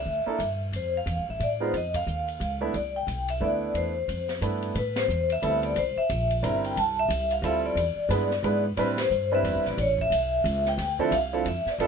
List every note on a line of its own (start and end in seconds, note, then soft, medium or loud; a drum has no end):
0.00 0.57 E5 medium
0.06 0.25 D2 medium
0.26 0.38 A#3 soft
0.26 0.38 D4 soft
0.26 0.38 E4 soft
0.26 0.39 A4 medium
0.26 muted upright bass stroke soft
0.39 0.72 G2 medium
0.39 hi-hat pedal soft
0.39 ride soft
0.72 1.05 F2 medium
0.72 0.96 C5 medium
0.72 ride medium
0.97 1.27 F5 medium
1.06 1.19 E2 medium
1.06 hi-hat pedal soft
1.06 ride medium
1.17 1.28 C2 soft
1.29 1.39 A1 medium
1.29 1.42 E5 medium
1.40 1.72 A2 medium
1.40 1.63 D5 medium
1.40 ride soft
1.60 1.72 G#3 medium
1.60 1.72 B3 medium
1.60 1.72 D#4 medium
1.60 1.72 F4 medium
1.60 1.75 C5 medium
1.73 2.06 F2 medium
1.73 ride medium
1.77 1.85 D#5 medium
1.94 2.58 F5 medium
1.94 kick medium
1.94 ride medium
2.07 2.39 D#2 medium
2.07 hi-hat pedal soft
2.28 ride soft
2.40 2.73 C#2 medium
2.40 ride soft
2.61 2.73 A3 medium
2.61 2.73 B3 soft
2.61 2.73 D4 soft
2.61 2.73 E4 medium
2.74 3.06 C2 medium
2.74 2.94 D5 medium
2.74 ride soft
2.96 3.27 G5 medium
3.07 3.40 B1 medium
3.07 hi-hat pedal soft
3.07 ride soft
3.28 3.41 E5 medium
3.28 ride soft
3.41 3.73 D2 medium
3.41 3.91 A3 soft
3.41 3.91 B3 soft
3.41 3.91 D4 soft
3.41 3.92 E4 soft
3.41 3.77 D5 medium
3.74 4.07 E2 medium
3.74 4.39 C5 medium
3.74 ride soft
4.08 4.41 F2 medium
4.08 hi-hat pedal soft
4.08 ride medium
4.29 snare soft
4.29 ride soft
4.41 4.74 G2 medium
4.41 4.75 A3 soft
4.41 4.75 B3 soft
4.41 4.76 D4 soft
4.41 4.76 E4 soft
4.41 hi-hat pedal soft
4.41 ride medium
4.62 ride soft
4.75 5.08 A2 medium
4.75 4.96 B4 medium
4.75 ride medium
4.96 5.32 C5 medium
4.96 snare medium
4.96 ride medium
5.08 5.41 E2 medium
5.08 hi-hat pedal medium
5.30 5.62 E5 medium
5.30 ride soft
5.42 5.75 D2 medium
5.42 5.76 G3 soft
5.42 5.76 B3 soft
5.42 5.76 C4 soft
5.42 5.76 E4 soft
5.42 5.76 A4 medium
5.42 ride medium
5.63 5.77 D5 medium
5.63 ride soft
5.76 5.95 C2 medium
5.76 5.98 C5 medium
5.76 ride medium
5.96 6.60 E5 medium
5.96 muted upright bass stroke soft
6.10 6.42 A#1 medium
6.10 hi-hat pedal medium
6.10 ride medium
6.31 ride soft
6.43 6.75 G1 medium
6.43 6.76 G3 medium
6.43 6.77 C4 medium
6.43 6.76 D4 soft
6.43 6.77 E4 soft
6.43 6.77 A#4 medium
6.43 hi-hat pedal medium
6.43 ride medium
6.64 6.78 G5 medium
6.64 ride soft
6.76 7.08 C2 medium
6.76 6.98 A5 loud
6.76 ride medium
6.99 7.33 E5 loud
7.09 7.41 C2 medium
7.09 hi-hat pedal soft
7.09 ride medium
7.31 7.45 F5 medium
7.31 ride soft
7.42 7.75 D2 medium
7.42 7.77 G3 soft
7.42 7.77 C4 medium
7.42 7.77 E4 medium
7.42 7.78 F4 soft
7.42 7.78 A4 medium
7.42 7.66 E5 medium
7.42 ride medium
7.66 8.62 D5 medium
7.75 7.95 E2 medium
7.75 ride medium
7.96 muted upright bass stroke soft
8.09 8.42 G2 medium
8.09 8.29 G#3 medium
8.09 8.29 B3 medium
8.09 8.29 D4 medium
8.09 8.29 E4 soft
8.09 8.29 B4 medium
8.09 hi-hat pedal medium
8.09 ride medium
8.31 snare soft
8.43 8.76 G#2 medium
8.43 8.63 G#3 medium
8.43 8.63 B3 soft
8.43 8.63 D4 medium
8.43 8.63 E4 soft
8.43 8.63 B4 medium
8.43 ride medium
8.77 9.10 A2 medium
8.77 8.96 G3 medium
8.77 8.96 C4 medium
8.77 8.97 D4 medium
8.77 8.96 E4 medium
8.77 8.97 B4 medium
8.77 9.00 B4 medium
8.77 ride medium
8.98 9.34 C5 medium
8.98 snare medium
8.98 ride medium
9.10 9.43 G2 medium
9.10 hi-hat pedal medium
9.32 9.76 G3 medium
9.32 9.76 C4 medium
9.32 9.76 D4 medium
9.32 9.76 E4 medium
9.32 9.76 B4 medium
9.32 9.65 E5 medium
9.43 9.57 E2 medium
9.43 ride medium
9.55 9.66 C2 medium
9.65 9.77 A1 medium
9.65 9.79 D5 medium
9.65 snare soft
9.78 10.10 A1 medium
9.78 9.99 C#5 medium
9.78 ride medium
9.98 10.69 E5 medium
9.98 kick medium
10.10 10.43 B1 medium
10.10 hi-hat pedal medium
10.10 ride medium
10.44 10.77 C#2 medium
10.44 ride medium
10.65 10.98 G5 medium
10.65 snare soft
10.78 11.10 D2 medium
10.78 snare soft
10.78 ride medium
10.99 11.11 F3 medium
10.99 11.11 C4 medium
10.99 11.11 D4 medium
10.99 11.11 E4 medium
10.99 11.11 A4 medium
10.99 kick soft
11.03 11.08 E5 medium
11.11 11.44 C2 medium
11.11 11.48 F5 medium
11.11 hi-hat pedal medium
11.11 ride medium
11.33 11.45 F3 soft
11.33 11.44 C4 soft
11.33 11.45 D4 soft
11.33 11.45 E4 medium
11.33 11.45 A4 medium
11.46 11.65 F2 medium
11.46 11.70 E5 medium
11.46 ride medium
11.66 muted upright bass stroke soft
11.66 snare soft
11.71 11.81 D5 medium
11.78 11.87 G2 medium
11.78 11.87 G3 medium
11.78 11.87 B3 medium
11.78 11.87 D4 medium
11.78 11.87 F4 medium
11.78 11.87 A4 medium
11.78 ride medium
11.83 11.87 E5 medium